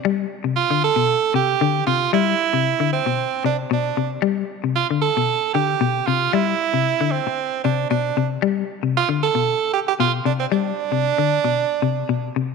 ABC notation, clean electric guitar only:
X:1
M:4/4
L:1/16
Q:"Swing 16ths" 1/4=114
K:C
V:1 name="Clean electric guitar" clef=bass
G,2 z C,2 D,2 B,,2 z C,2 D,2 C,2 | G,2 z C,2 D,2 B,,2 z C,2 B,,2 C,2 | G,2 z C,2 D,2 B,,2 z D,2 B,,2 C,2 | G,2 z C,2 D,2 z3 C,2 B,,2 C,2 |
G,2 z C,2 D,2 B,,2 z3 B,,2 C,2 | G,2 z C,2 D,2 B,,2 z C,2 B,,2 C,2 |]